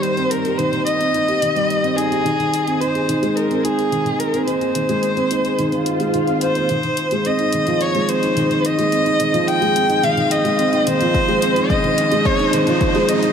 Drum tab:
HH |xxxxxxxxxxxxxxxx|xxxxxxxxxxxxxxxx|xxxxxxxxxxxxxxxx|xxxxxxxxxxxxxxxx|
BD |----------------|----------------|----------------|----------------|

HH |xxxxxxxxxxxxxxxx|xxxxxxxxxxxxxxxx|
BD |----------------|o---o---o---o---|